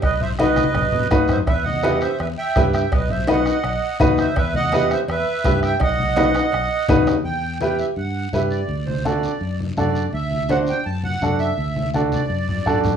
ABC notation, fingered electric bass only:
X:1
M:4/4
L:1/8
Q:1/4=166
K:Bphr
V:1 name="Fingered electric bass" clef=bass
B,,,4 B,,, B,, A,, F,, | E,,4 E,, z G,,2 | B,,,4 B,,, z ^D,,2 | E,,4 E,, z G,,2 |
B,,,4 B,,, z ^D,,2 | [K:Dmix] E,,4 G,,2 G,,2 | D,,4 F,,2 F,,2 | D,,4 F,,2 F,,2 |
D,,4 F,,2 F,,2 |]